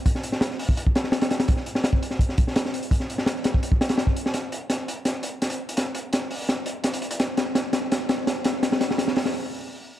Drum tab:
HH |x-x-x-o-x-x-xxxx|x-x-x-x-x-x-x-xx|x-x-x-x-x-xxx-x-|x-x-x-x-x-x-xx-x|
SD |-o-ooo----oooooo|-o-oo--o-o-ooo--|-o-oooo---ooo--o|o---o---o---o---|
BD |o------o-o------|o----o--o-o-----|o------o-o---o--|----------------|

HH |x-x-x-o-x-x-xxxx|x-x-x-x-x-x-x-x-|x-x-x-o---------|
SD |o---o---o---o---|o-o-o-o-o-o-o-o-|oooooooo--------|
BD |----------------|----------------|----------------|